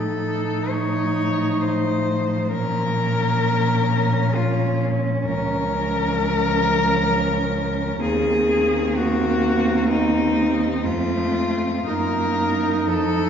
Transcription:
Already playing: A2 F3 D#4 A4
0.70 C#5
1.61 C5
2.51 A#2 C#4 A#4
4.35 F4
5.26 C#2 F3 A#4
8.02 D#2 A#3 C4 G#4
8.96 F#4
9.89 D#4
10.85 F2 A3 F4
11.87 F#2 A#3 D#4 A#4
12.86 F2 F3 A4

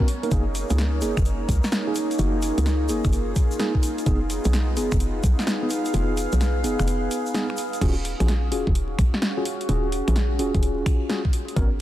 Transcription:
Already playing: C#4 A#4 C#5
0.08 A#3 D#4 G#4, open hi-hat
0.23 A#3 D#4 A#4, closed hi-hat
0.31 F#1 A#3 D#4 G#4, kick, closed hi-hat, shaker
0.55 open hi-hat, shaker
0.70 C#2 A#3 D#4 G#4, closed hi-hat, shaker
0.78 snare, closed hi-hat, shaker
1.02 F#1 A#3 D#4 G#4, open hi-hat, shaker
1.17 F#1, finger snap, kick, closed hi-hat, shaker
1.25 closed hi-hat, shaker
1.49 C#2, kick, open hi-hat, shaker
1.64 snare, shaker
1.72 snare, closed hi-hat, shaker
1.87 A#3 D#4 G#4
1.95 F4, open hi-hat, shaker
2.11 closed hi-hat, shaker
2.19 F#1 A#3 D#4 F#4, closed hi-hat, shaker
2.42 open hi-hat, shaker
2.58 C#2 A#3 D#4 G#4, closed hi-hat, shaker
2.66 snare, closed hi-hat, shaker
2.89 F#1 A#3 D#4 G#4, open hi-hat, shaker
3.04 F#1, finger snap, kick, closed hi-hat, shaker
3.12 closed hi-hat, shaker
3.36 kick, open hi-hat, shaker
3.51 shaker
3.59 A#3 D#4 G#4, snare, closed hi-hat, shaker
3.75 kick
3.83 open hi-hat, shaker
3.98 closed hi-hat, shaker
4.06 F1 B3 D#4 G#4, kick, closed hi-hat, shaker
4.17 G#4
4.30 open hi-hat, shaker
4.44 B1 B3 D#4 G#4, closed hi-hat, shaker
4.51 F5, snare, closed hi-hat, shaker
4.62 B4
4.77 F1 B3 D#4 G#4, open hi-hat, shaker
4.92 F1, finger snap, kick, closed hi-hat, shaker
5.00 closed hi-hat, shaker
5.24 B1, kick, open hi-hat, shaker
5.39 snare, shaker
5.47 snare, closed hi-hat, shaker
5.62 B3 D#4 G#4
5.70 open hi-hat, shaker
5.85 closed hi-hat, shaker
5.93 F1 B3 D#4 F4, closed hi-hat, shaker
6.17 open hi-hat, shaker
6.32 B1 B3 D#4 G#4, closed hi-hat, shaker
6.41 snare, closed hi-hat, shaker
6.64 F1 B3 D#4 G#4, open hi-hat, shaker
6.79 F1, finger snap, closed hi-hat, shaker
6.87 closed hi-hat, shaker
7.11 open hi-hat, shaker
7.26 shaker
7.35 B3 D#4 G#4, snare, closed hi-hat, shaker
7.50 finger snap
7.57 open hi-hat, shaker
7.73 closed hi-hat, shaker
7.81 D#1 C#4 F4 F#4 G#4, kick, closed hi-hat, crash
8.05 open hi-hat
8.19 A#1 C#4 F4 F#4 G#4, finger snap, closed hi-hat
8.28 snare, closed hi-hat
8.52 D#1 C#4 F4 F#4 G#4, open hi-hat
8.67 D#1, kick
8.75 closed hi-hat
8.99 A#1, finger snap, kick, open hi-hat
9.14 snare
9.22 snare, closed hi-hat
9.37 C#4 F4 F#4 G#4
9.45 open hi-hat
9.61 closed hi-hat
9.69 D#1 C#4 F4 F#4 G#4, closed hi-hat
9.92 open hi-hat
10.08 A#1 C#4 F4 F#4 G#4, finger snap, closed hi-hat
10.16 snare, closed hi-hat
10.39 D#1 C#4 F4 F#4 G#4, open hi-hat
10.55 D#1, kick, closed hi-hat
10.63 closed hi-hat
10.86 finger snap, kick, open hi-hat
11.09 C#4 F4 F#4 G#4, snare, closed hi-hat
11.25 kick
11.33 B3, open hi-hat
11.48 A#4, closed hi-hat
11.56 G#1 B3 C#4 F#4 A#4, kick, closed hi-hat
11.77 C#5

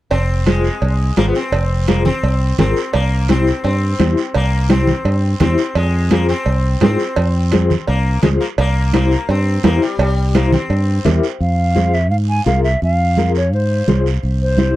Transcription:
0.11 F1 C4, cowbell, high conga, long guiro
0.46 G#3 F4 G#4 C5, cowbell, high conga, short guiro
0.64 short guiro
0.82 C2, cowbell, high conga, long guiro
1.17 G#1 A#3 F4 G#4 C5, cowbell, high conga, short guiro
1.28 B3
1.35 C4, short guiro
1.52 F1, cowbell, high conga, long guiro
1.88 A#3 F4 G#4 C5, cowbell, high conga, short guiro
2.05 C4, low conga, short guiro
2.23 C2, cowbell, high conga, long guiro
2.58 G#1 C4 F4 G#4 A#4, cowbell, high conga, low conga, short guiro
2.76 short guiro
2.93 C2 A#3, cowbell, high conga, long guiro
3.29 C4 E4 G4 C5, cowbell, high conga, short guiro
3.47 short guiro
3.64 G2 C4, cowbell, high conga, long guiro
3.99 E2 E4 G4 C5, cowbell, high conga, short guiro
4.17 short guiro
4.34 C2 A#3, cowbell, high conga, long guiro
4.69 C4 E4 G4 C5, cowbell, high conga, short guiro
4.87 low conga, short guiro
5.05 G2, cowbell, high conga, long guiro
5.40 E2 C4 E4 G4 C5, cowbell, high conga, low conga, short guiro
5.58 short guiro
5.75 F2 G#3, cowbell, high conga, long guiro
6.11 A#3 F4 G#4 C5, cowbell, high conga, short guiro
6.29 C4, short guiro
6.46 C2, cowbell, high conga, long guiro
6.81 G#2 C4 F4 G#4 C5, cowbell, high conga, low timbale, short guiro
6.99 short guiro
7.16 F2, cowbell, high conga, long guiro
7.52 F4 G#4 C5, cowbell, high conga, short guiro
7.70 low conga, short guiro
7.87 C2 A#3, cowbell, high conga, long guiro
8.22 C#2 G#3 F4 G#4 C5, cowbell, high conga, low conga, short guiro
8.40 A#3, short guiro
8.58 C2 A#3, cowbell, high conga, long guiro
8.93 A#3 E4 G4 C5, cowbell, high conga, short guiro
9.11 short guiro
9.29 G2 C4, cowbell, high conga, long guiro
9.64 E2 A#3 E4 G4 C5, cowbell, high conga, low timbale, short guiro
9.82 G3, short guiro
9.99 C2 G3, cowbell, high conga, long guiro
10.35 A#3 E4 G4 C5, cowbell, high conga, short guiro
10.53 C4, low conga, short guiro
10.70 G2, cowbell, high conga, long guiro
11.05 E2 E4 G4 A#4, cowbell, high conga, low conga, short guiro
11.24 short guiro
11.40 F2 F5, high conga, long guiro
11.76 F4 G#4 C5, high conga, short guiro
11.94 E5, short guiro
12.11 G#2 F5, high conga, long guiro
12.29 G#5
12.46 C2 F4 G#4 A#4 F5, high conga, short guiro
12.64 E5, short guiro
12.82 F2 F5, high conga, long guiro
13.17 F4 G#4 A#4, high conga, short guiro
13.35 C#5, short guiro
13.53 G#2 C5, high conga, long guiro
13.88 C2 F4 G#4 C5, high conga, low conga, short guiro
14.06 short guiro
14.23 C2, high conga, long guiro
14.42 C5
14.58 E4 G4 C5, high conga, short guiro

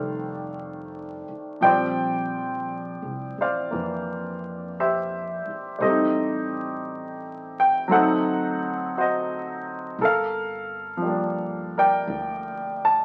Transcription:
Already playing: F1 D#3 G3 A3 D4 A4 C5 F5
1.29 muted upright bass stroke
1.61 A#1 F3 C5 D5 G5
1.65 G3 C4
1.72 D4
3.02 C2
3.38 A1 C5 D5 F5
3.71 F2 E3 A#3 D4
4.80 G4 C5 E5
5.47 muted upright bass stroke
5.79 A1 G3 A3 G4 C5 D#5
5.85 C4
5.89 D#4
7.60 G5
7.88 D2 F#3 A3 C4 A4 C5
7.92 D#4 F#5
8.98 F#4 C5 D#5
9.99 G1 A4 A#4
10.05 F5
10.97 F3
11.02 G3 A#3
11.09 D4
11.78 A#4 D5 G5
12.07 D2
12.85 A5

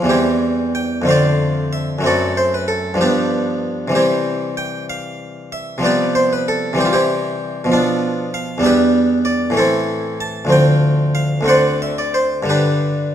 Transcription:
0.02 E2 E3 G3
0.09 C4 E4 G4
0.75 G5
1.02 F2 D3 A3
1.07 C4 C5 D5 F5
1.73 E5
1.99 F#2 F#3 A3
2.04 C4 F#4 A4 D5
2.37 C5
2.54 B4
2.68 A4
2.94 G2 F3 G3
3.01 B3 D4 G4
3.88 C3 E3 G3
3.95 C4 E4 G4
4.57 G5
4.90 F5
5.52 E5
5.78 C3 F3 G3
5.83 B3 G4 B4 D5
6.15 C5
6.33 B4
6.48 A4
6.73 C3 E3 G3
6.78 C4 G4
6.85 F4
6.93 C4 E4 G4
7.64 B2 F3
7.72 B3 D4 F4
8.34 F5
8.58 E2 G3 B3
8.63 D4 G4 B4 E5
9.25 D5
9.50 A2 E3 A3
9.57 C4 E4 A4
10.21 A5
10.45 D2 F3 A3
10.50 C4 G5
11.15 F5
11.41 D2 D3 A3
11.46 C4 C5 D5 F#5
11.82 E5
11.98 D5
12.14 C5
12.43 G2 D3 G3
12.49 D4 G4 B4

